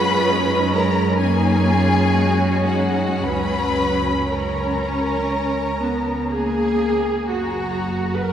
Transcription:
0.00 3.20 F#2 medium
0.00 1.15 G#3 medium
0.00 1.15 C#4 medium
0.00 0.30 F4 medium
0.00 0.75 B4 loud
0.00 0.71 B5 loud
0.30 0.75 D#4 medium
0.73 1.20 C#4 medium
0.73 1.19 A#4 medium
0.73 1.18 A#5 loud
1.19 2.14 A#3 medium
1.19 3.20 C#4 medium
1.19 1.66 D#4 medium
1.19 2.67 G#4 loud
1.19 2.64 G#5 loud
1.66 2.14 F4 medium
2.14 3.22 G#3 medium
2.14 2.68 F#4 medium
2.65 3.23 D#4 medium
2.65 3.22 F#4 medium
2.65 3.22 F#5 medium
3.23 7.05 C#2 medium
3.23 4.31 F#3 medium
3.23 4.29 C#4 medium
3.23 6.81 C#4 medium
3.23 4.30 B4 medium
3.23 4.30 B5 medium
4.30 5.77 C#4 medium
4.30 6.30 A#4 medium
4.30 6.81 A#5 medium
5.82 6.31 B3 medium
6.31 7.30 A#3 medium
6.31 7.26 G#4 medium
6.31 7.27 G#4 medium
7.28 8.33 F#1 medium
7.28 8.33 F#2 medium
7.28 8.15 F#4 medium
7.28 8.23 F#4 medium
7.28 8.18 A#5 medium
8.15 8.22 B4 medium
8.21 8.33 A#4 medium
8.21 8.33 F#5 medium

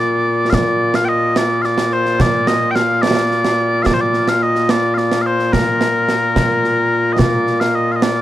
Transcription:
0.00 8.22 A#2 medium
0.00 8.22 A#3 medium
0.00 8.22 F4 medium
0.00 0.50 D5 loud
0.50 0.54 F5 loud
0.50 concert bass drum medium
0.50 snare loud
0.54 0.95 D5 loud
0.94 1.05 F5 loud
0.94 snare medium
1.05 1.38 D#5 loud
1.05 1.09 G5 loud
1.36 1.62 D5 loud
1.36 snare loud
1.62 1.93 D5 medium
1.62 1.65 F5 medium
1.62 snare soft
1.78 snare medium
1.93 2.21 C5 loud
2.06 snare soft
2.20 2.48 D5 loud
2.20 concert bass drum medium
2.20 snare loud
2.47 2.71 D#5 loud
2.47 snare medium
2.71 2.75 G5 loud
2.75 3.02 F5 loud
2.75 snare medium
3.02 3.83 D5 loud
3.02 snare loud
3.31 snare soft
3.45 snare medium
3.83 3.94 D5 loud
3.83 3.86 F5 loud
3.83 concert bass drum medium
3.83 snare medium
3.94 4.01 C5 medium
4.01 4.29 D5 medium
4.14 snare soft
4.28 4.43 F5 medium
4.28 snare medium
4.43 4.71 D#5 loud
4.55 snare soft
4.69 4.94 D5 loud
4.69 snare medium
4.94 5.22 D5 medium
4.94 4.98 F5 medium
4.94 snare soft
5.12 snare medium
5.22 5.26 F5 medium
5.26 5.53 C5 medium
5.39 snare soft
5.53 7.13 A#4 medium
5.53 concert bass drum medium
5.53 snare loud
5.81 snare medium
6.09 snare medium
6.36 concert bass drum medium
6.36 snare medium
6.64 snare soft
7.13 7.19 D#5 medium
7.19 7.60 D5 medium
7.19 concert bass drum medium
7.19 snare loud
7.47 snare soft
7.60 7.75 F5 medium
7.60 snare medium
7.75 7.92 D#5 medium
7.92 7.96 F5 medium
7.96 8.03 D#5 medium
8.02 8.22 D5 medium
8.02 snare loud

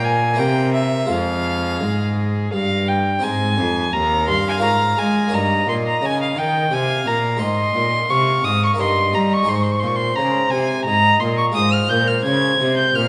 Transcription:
0.00 0.36 A#2 medium
0.00 0.41 A#2 medium
0.00 0.36 F4 medium
0.00 0.38 A#4 medium
0.00 0.36 C#5 medium
0.04 0.40 G#5 loud
0.34 1.05 A#3 medium
0.34 1.06 E4 medium
0.34 1.07 C5 medium
0.38 1.06 C3 medium
0.38 1.11 C3 medium
0.38 1.10 A#4 medium
0.38 0.74 G5 loud
0.74 1.13 E5 loud
1.06 2.46 G#3 medium
1.06 3.17 F4 medium
1.06 2.52 G#4 medium
1.06 3.18 C5 medium
1.10 1.77 F2 medium
1.10 1.85 F2 medium
1.10 2.53 F5 loud
1.81 2.49 G#2 medium
1.81 2.53 G#2 medium
2.53 3.19 G2 medium
2.53 3.22 G2 medium
2.53 2.89 F5 loud
2.88 3.25 G5 medium
3.19 4.57 C4 medium
3.19 4.57 D#4 medium
3.19 4.58 C5 medium
3.23 3.55 G#2 medium
3.23 3.61 G#2 medium
3.23 3.94 G#5 loud
3.58 3.90 F2 medium
3.58 3.94 F2 medium
3.93 4.25 D#2 medium
3.93 4.31 D#2 medium
3.93 5.36 F5 loud
3.93 4.28 A#5 loud
4.27 4.59 G2 medium
4.27 4.65 G2 medium
4.27 4.45 C6 loud
4.49 4.55 G#5 loud
4.58 5.26 A#3 medium
4.58 5.29 F4 medium
4.58 5.30 C#5 medium
4.62 4.94 G#2 medium
4.62 4.98 G#2 medium
4.62 5.00 A#5 loud
4.97 5.29 G#3 medium
4.97 5.36 G#3 medium
4.97 5.35 G#5 loud
5.27 7.34 A#3 medium
5.27 7.35 D#4 medium
5.27 7.36 C#5 medium
5.32 5.64 G2 medium
5.32 5.68 G2 medium
5.32 6.73 D#5 medium
5.32 5.68 A#5 loud
5.67 5.98 A#2 medium
5.67 6.02 A#2 medium
5.67 5.75 C6 loud
5.87 6.07 A#5 loud
6.02 6.33 C#3 medium
6.02 6.39 C#3 medium
6.02 6.21 G#5 loud
6.22 6.40 F5 medium
6.36 6.68 D#3 medium
6.36 6.71 D#3 medium
6.36 6.74 G5 loud
6.71 7.02 C3 medium
6.71 7.06 C3 medium
6.71 7.41 F5 medium
6.71 7.09 G#5 loud
7.05 7.37 A#2 medium
7.05 7.43 A#2 medium
7.05 7.40 A#5 medium
7.37 8.74 G#3 medium
7.37 8.74 D#4 medium
7.37 8.75 C5 medium
7.41 7.72 G#2 medium
7.41 7.75 G#2 medium
7.41 8.09 D#5 medium
7.41 8.11 C6 loud
7.75 8.06 A#2 medium
7.75 8.10 A#2 medium
8.10 8.41 C3 medium
8.10 8.45 C3 medium
8.10 8.79 F5 medium
8.10 8.46 C#6 loud
8.44 8.75 G#2 medium
8.44 8.79 G#2 medium
8.44 8.62 D#6 loud
8.64 8.71 C#6 loud
8.74 9.44 A#3 medium
8.74 9.43 D#4 medium
8.74 9.45 D#5 medium
8.79 9.10 G2 medium
8.79 9.16 G2 medium
8.79 9.52 D#5 medium
8.79 9.16 C6 loud
9.13 9.45 G3 medium
9.13 9.48 G3 medium
9.13 9.35 A#5 medium
9.33 9.50 C#6 loud
9.43 11.49 G#3 medium
9.43 11.50 D#4 medium
9.43 11.51 D#5 medium
9.48 9.79 G#2 medium
9.48 9.85 G#2 medium
9.48 10.88 C5 loud
9.48 9.57 C6 medium
9.55 9.65 C#6 medium
9.63 9.73 C6 medium
9.71 9.81 C#6 medium
9.79 10.14 A#2 medium
9.79 10.17 A#2 medium
9.79 9.88 C6 medium
9.87 9.97 C#6 medium
9.96 10.17 C6 loud
10.16 10.51 C#3 medium
10.16 10.49 C#3 medium
10.16 10.52 A#5 loud
10.50 10.86 C3 medium
10.50 10.83 C3 medium
10.50 10.84 G#5 loud
10.85 11.18 G#2 medium
10.85 11.21 G#2 medium
10.85 11.56 D#5 medium
10.85 11.21 A#5 loud
11.20 11.52 A#2 medium
11.20 11.55 A#2 medium
11.20 11.37 C6 loud
11.38 11.45 C#6 loud
11.52 13.08 G#3 medium
11.52 13.08 F4 medium
11.52 13.08 C5 medium
11.52 11.74 D#6 loud
11.56 11.87 G#2 medium
11.56 11.90 G#2 medium
11.56 13.08 C5 loud
11.73 11.91 F6 loud
11.89 12.21 A#2 medium
11.89 12.25 A#2 medium
11.89 12.09 G6 loud
12.07 12.24 F6 loud
12.24 12.56 C#3 medium
12.24 12.59 C#3 medium
12.24 12.75 G#6 loud
12.60 12.94 C3 medium
12.60 12.91 C3 medium
12.77 12.96 G6 loud
12.95 13.08 A#2 medium
12.95 13.08 F6 loud

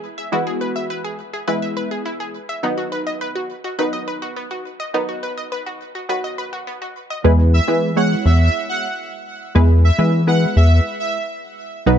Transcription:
0.18 0.28 E5 medium
0.32 1.22 E3 loud
0.32 1.22 G#3 medium
0.32 1.23 B3 medium
0.32 0.43 E4 medium
0.32 1.23 F#4 loud
0.47 0.57 G#4 medium
0.61 0.71 B4 medium
0.76 0.86 E5 medium
0.90 1.00 B4 medium
1.04 1.15 G#4 medium
1.34 1.44 G#4 medium
1.48 2.38 E3 medium
1.48 2.38 G#3 medium
1.48 2.38 B3 medium
1.48 2.38 E4 loud
1.48 1.58 B4 loud
1.62 1.73 E5 medium
1.77 1.87 B4 medium
1.91 2.01 G#4 medium
2.06 2.16 E4 medium
2.20 2.30 G#4 medium
2.49 2.59 E5 medium
2.63 3.53 D#3 loud
2.63 3.53 F#3 medium
2.63 3.54 B3 medium
2.63 2.74 B3 medium
2.63 3.54 D#4 loud
2.78 2.88 F#4 medium
2.92 3.02 B4 medium
3.07 3.17 D#5 medium
3.21 3.31 B4 medium
3.35 3.46 F#4 medium
3.64 3.75 F#4 medium
3.79 4.69 D#3 medium
3.79 4.69 F#3 medium
3.79 4.69 B3 medium
3.79 4.69 D#4 loud
3.79 3.89 B4 loud
3.93 4.03 D#5 medium
4.08 4.18 B4 medium
4.22 4.32 F#4 medium
4.36 4.47 B3 medium
4.51 4.61 F#4 medium
4.80 4.90 D#5 medium
4.94 5.84 D#3 loud
4.94 5.84 F#3 medium
4.94 5.84 B3 medium
4.94 5.04 B3 loud
4.94 5.84 D#4 loud
5.09 5.19 F#4 medium
5.23 5.33 B4 medium
5.38 5.48 D#5 medium
5.52 5.62 B4 medium
5.66 5.77 F#4 medium
5.95 6.05 F#4 medium
6.09 6.99 D#3 loud
6.09 6.99 F#3 medium
6.09 7.00 B3 medium
6.09 7.00 F#4 loud
6.09 6.20 B4 medium
6.24 6.34 D#5 medium
6.38 6.49 B4 medium
6.53 6.63 F#4 medium
6.67 6.77 B3 medium
6.82 6.92 F#4 medium
7.10 7.21 D#5 medium
7.24 7.60 E2 loud
7.24 7.58 G#3 loud
7.24 7.58 B3 medium
7.24 7.58 E4 medium
7.24 7.59 G#4 medium
7.24 7.59 B4 loud
7.54 7.64 E5 medium
7.68 8.15 E3 medium
7.68 7.90 G#3 medium
7.68 7.90 B3 medium
7.68 7.91 E4 medium
7.68 7.91 G#4 medium
7.68 7.91 B4 medium
7.96 8.87 G#3 medium
7.96 8.87 B3 medium
7.96 8.87 E4 medium
7.96 8.87 G#4 medium
7.96 8.87 C#5 medium
7.96 8.07 F#5 medium
8.26 8.49 E2 loud
8.26 8.36 E5 medium
8.40 8.61 E5 medium
8.69 8.79 F#5 medium
9.55 9.91 E2 loud
9.55 9.89 G#3 loud
9.55 9.89 B3 medium
9.55 9.89 E4 medium
9.55 9.89 G#4 medium
9.55 9.89 B4 loud
9.85 9.95 E5 medium
9.98 10.46 E3 medium
9.98 10.21 G#3 medium
9.98 10.21 B3 medium
9.98 10.21 E4 medium
9.98 10.21 G#4 medium
9.98 10.22 B4 medium
10.27 11.18 G#3 medium
10.27 11.18 B3 medium
10.27 11.18 E4 medium
10.27 11.18 G#4 medium
10.27 11.18 B4 medium
10.27 10.38 F#5 medium
10.57 10.80 E2 loud
10.57 10.77 E5 medium
11.00 11.10 E5 medium
11.86 11.98 B1 loud
11.86 11.98 F#3 loud
11.86 11.98 B3 medium
11.86 11.98 D#4 medium
11.86 11.98 F#4 medium
11.86 11.98 B4 loud

